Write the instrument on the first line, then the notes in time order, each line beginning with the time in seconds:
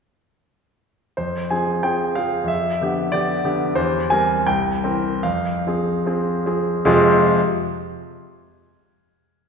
grand piano
1.17 F2 C5
1.50 F3 C4 G#4 G#5
1.83 F3 C4 G#4 G5
2.15 F3 C4 G#4 F5
2.44 F2 E5
2.81 D3 B3 G4
3.12 D3 B3 G4 D5
3.44 D3 B3 G4
3.75 E2 C5
4.10 G3 C4 A#4 G#5
4.47 C2 G5
4.84 E3 C4 A#4
5.23 F2 F5
5.67 F3 C4 G#4
6.06 F3 C4 G#4
6.46 F3 C4 G#4
6.85 F2 C3 G#3 C4 F4 G#4